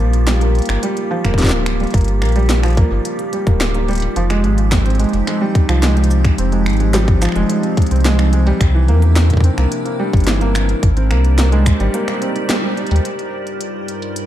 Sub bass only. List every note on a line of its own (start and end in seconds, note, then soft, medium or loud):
0.00 0.61 A#1 loud
0.69 0.78 G1 medium
1.25 1.86 D1 medium
1.94 2.23 G1 medium
2.22 2.83 A#1 loud
2.91 3.00 G1 medium
3.47 4.08 D1 medium
4.16 4.45 F1 loud
4.44 5.05 G#1 loud
5.13 5.22 F1 medium
5.69 6.31 C2 medium
6.38 6.68 F1 loud
6.66 7.28 G#1 loud
7.36 7.45 F1 medium
7.91 8.53 C2 medium
8.61 8.90 C2 loud
8.88 9.50 E2 loud
9.58 9.67 C2 medium
10.13 10.75 G1 medium
10.83 11.12 G#1 loud
11.11 11.72 C2 loud
11.80 11.89 G#1 medium
12.91 13.00 D#2 loud